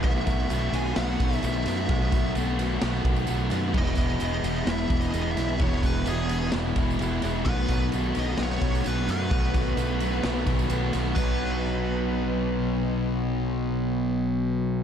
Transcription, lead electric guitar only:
\new Staff \with { instrumentName = "Lead electric guitar" } { \time 4/4 \key b \mixolydian \tempo 4 = 130 e''4. gis''8 fis''4 e''8 e''8~ | e''4 r2. | dis''4 dis''4 \tuplet 3/2 { e''4 dis''8~ dis''8 e''4 } | cis''8 b'8 gis'4 r2 |
b'4 r8 dis''8 cis''4 b'8 b'8~ | b'2.~ b'8 r8 | b'1~ | b'1 | }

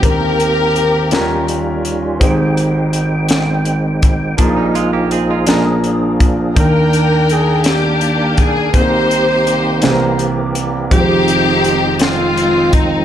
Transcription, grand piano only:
\new Staff \with { instrumentName = "Grand piano" } { \time 6/8 \key ees \major \tempo 4. = 55 <ees, ees c' ees' g' bes' c''>4. <ees, ees des' ees' f' g' bes'>4. | <aes,, aes, c' ees' g' aes' c''>2. | <bes,, bes, bes d' ees' f' aes' bes'>4. <bes,, bes, bes d' f' aes' bes'>4. | <ees, ees bes d' bes' g''>2. |
<c, c bes c' ees' g' aes' bes'>4. <c, c e bes c' g' aes' bes'>4. | <f,, f, aes c' ees' f' g' c''>2. | }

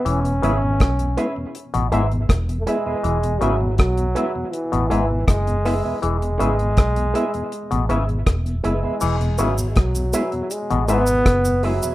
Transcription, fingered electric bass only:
\new Staff \with { instrumentName = "Fingered electric bass" } { \clef bass \time 4/4 \key e \major \tempo 4 = 80 e,,8 gis,,8 b,,8 r8. a,,16 gis,,8 e,,8 r8 | e,,8 gis,,8 b,,8 r8. a,,16 gis,,8 fis,,8. r16 | e,,8 gis,,8 b,,8 r8. a,,16 gis,,8 e,,8 fis,,16 r16 | e,,8 gis,,8 b,,8 r8. a,,16 gis,,8 fis,,8. r16 | }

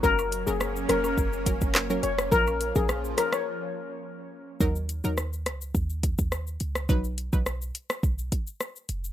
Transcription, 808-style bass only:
\new Staff \with { instrumentName = "808-style bass" } { \clef bass \time 4/4 \key ees \minor \tempo 4 = 105 ges,,8. ges,,8. f,,8 ges,,8. ges,,8. f,,8 | bes,,8. bes,,8. r2 r8 | ees,8. ees,8. des,8 ees,8. ees,8. des,8 | b,,8. b,,8. r8 b,,8 r4 f,,8 | }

